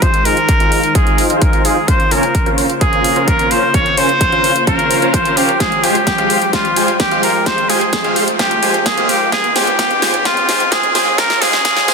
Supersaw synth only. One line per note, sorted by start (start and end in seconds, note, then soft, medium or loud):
0.02 0.14 D#4 medium
0.02 0.14 F4 medium
0.02 0.14 G#4 medium
0.02 0.14 C5 medium
0.02 0.14 F5 loud
0.25 0.38 D#4 medium
0.25 0.38 F4 medium
0.25 0.38 G#4 medium
0.25 0.38 C5 medium
0.25 0.38 A#5 loud
0.60 0.80 D#4 medium
0.60 0.80 F4 medium
0.60 0.80 G#4 medium
0.60 0.80 C5 medium
0.60 0.80 F5 medium
0.95 1.27 D#4 medium
0.95 1.27 F4 medium
0.95 1.27 G#4 medium
0.95 1.27 C5 medium
0.95 1.27 F5 loud
1.30 1.62 D#4 medium
1.30 1.62 F4 medium
1.30 1.62 G#4 medium
1.30 1.62 C5 medium
1.30 1.62 F5 medium
1.65 1.77 D#4 medium
1.65 1.77 F4 medium
1.65 1.77 G#4 medium
1.65 1.77 C5 medium
1.65 1.77 F5 loud
1.88 2.00 C#4 medium
1.88 2.00 F4 medium
1.88 2.00 A#4 medium
1.88 2.00 C5 medium
1.88 2.00 F5 loud
2.11 2.24 C#4 medium
2.11 2.24 F4 medium
2.11 2.24 A#4 medium
2.11 2.24 C5 medium
2.11 2.24 G#5 loud
2.46 2.66 C#4 medium
2.46 2.66 F4 medium
2.46 2.66 A#4 medium
2.46 2.66 C5 medium
2.46 2.66 F5 medium
2.81 3.13 C#4 medium
2.81 3.13 F4 medium
2.81 3.13 A#4 medium
2.81 3.13 C5 medium
2.81 3.13 F5 loud
3.16 3.48 C#4 medium
3.16 3.48 F4 medium
3.16 3.48 A#4 medium
3.16 3.48 C5 medium
3.16 3.48 F5 medium
3.51 3.63 C#4 medium
3.51 3.63 F4 medium
3.51 3.63 A#4 medium
3.51 3.63 C5 medium
3.51 3.63 F5 loud
3.74 3.86 C#4 loud
3.74 3.86 F4 medium
3.74 3.86 A#4 medium
3.74 3.86 C5 medium
3.74 3.86 F5 loud
3.97 4.10 C#4 medium
3.97 4.10 F4 medium
3.97 4.10 A#4 medium
3.97 4.10 C5 medium
3.97 4.10 G#5 loud
4.32 4.52 C#4 medium
4.32 4.52 F4 medium
4.32 4.52 A#4 medium
4.32 4.52 C5 medium
4.32 4.52 F5 medium
4.67 4.99 C#4 loud
4.67 4.99 F4 medium
4.67 4.99 A#4 medium
4.67 4.99 C5 medium
4.67 4.99 F5 loud
5.02 5.34 C#4 medium
5.02 5.34 F4 medium
5.02 5.34 A#4 medium
5.02 5.34 C5 medium
5.02 5.34 F5 medium
5.37 5.49 C#4 medium
5.37 5.49 F4 medium
5.37 5.49 A#4 medium
5.37 5.49 C5 medium
5.37 5.49 F5 loud
5.60 5.72 G#3 medium
5.60 5.72 F4 medium
5.60 5.72 G4 medium
5.60 5.72 C5 medium
5.60 5.72 F5 loud
5.83 5.96 G#3 medium
5.83 5.96 F4 medium
5.83 5.96 G4 medium
5.83 5.96 C5 medium
5.83 5.96 G#5 medium
6.18 6.38 G#3 medium
6.18 6.38 F4 medium
6.18 6.38 G4 medium
6.18 6.38 C5 medium
6.18 6.38 F5 medium
6.53 6.65 G#3 medium
6.53 6.65 F4 medium
6.53 6.65 G4 medium
6.53 6.65 C5 medium
6.53 6.65 F5 loud
6.76 6.89 G#3 medium
6.76 6.89 F4 medium
6.76 6.89 G4 medium
6.76 6.89 C5 medium
6.76 6.89 G#5 medium
7.11 7.31 G#3 medium
7.11 7.31 F4 medium
7.11 7.31 G4 medium
7.11 7.31 C5 medium
7.11 7.31 F5 medium
7.46 7.58 G#3 medium
7.46 7.58 F4 medium
7.46 7.58 G4 medium
7.46 7.58 C5 medium
7.46 7.58 F5 loud
7.70 7.82 G#3 medium
7.70 7.82 F4 medium
7.70 7.82 G4 medium
7.70 7.82 C5 medium
7.70 7.82 G#5 loud
8.04 8.24 G#3 medium
8.04 8.24 F4 medium
8.04 8.24 G4 medium
8.04 8.24 C5 medium
8.04 8.24 F5 medium
8.39 8.51 G#3 medium
8.39 8.51 F4 medium
8.39 8.51 G4 medium
8.39 8.51 C5 medium
8.39 8.51 F5 loud
8.63 8.75 G#3 medium
8.63 8.75 F4 medium
8.63 8.75 G4 medium
8.63 8.75 C5 medium
8.63 8.75 G#5 loud
8.97 9.17 G#3 medium
8.97 9.17 F4 medium
8.97 9.17 G4 medium
8.97 9.17 C5 medium
8.97 9.17 F5 medium
9.32 9.44 G#3 loud
9.32 9.44 F4 medium
9.32 9.44 G4 medium
9.32 9.44 C5 medium
9.32 9.44 F5 loud
9.56 9.68 G#3 medium
9.56 9.68 F4 medium
9.56 9.68 G4 medium
9.56 9.68 C5 medium
9.56 9.68 G#5 loud
9.79 9.91 G#3 loud
9.79 9.91 F4 medium
9.79 9.91 G4 medium
9.79 9.91 C5 medium
9.79 9.91 F5 loud
10.02 10.14 G#3 medium
10.02 10.14 F4 medium
10.02 10.14 G4 medium
10.02 10.14 C5 medium
10.02 10.14 G#5 loud
10.25 10.38 G#3 medium
10.25 10.38 F4 medium
10.25 10.37 G4 medium
10.25 10.38 C5 medium
10.25 10.37 F5 loud
10.49 10.61 G#3 medium
10.49 10.61 F4 medium
10.49 10.61 G4 medium
10.49 10.61 C5 medium
10.49 10.61 G#5 loud
10.72 10.84 G#3 loud
10.72 10.84 F4 loud
10.72 10.84 G4 medium
10.72 10.84 C5 medium
10.72 10.84 F5 loud
10.95 11.07 G#3 medium
10.95 11.07 F4 medium
10.95 11.07 G4 medium
10.95 11.07 C5 medium
10.95 11.07 G#5 loud
11.18 11.31 G#3 loud
11.18 11.31 F4 medium
11.18 11.31 G4 medium
11.18 11.31 C5 medium
11.18 11.31 F5 loud
11.42 11.54 G#3 loud
11.42 11.54 F4 loud
11.42 11.54 G4 medium
11.42 11.54 C5 loud
11.42 11.54 F5 loud
11.65 11.77 G#3 loud
11.65 11.77 F4 loud
11.65 11.77 G4 medium
11.65 11.77 C5 medium
11.65 11.77 F5 loud
11.88 11.94 G#3 loud
11.88 11.94 F4 loud
11.88 11.94 G4 loud
11.88 11.94 C5 loud
11.88 11.94 F5 loud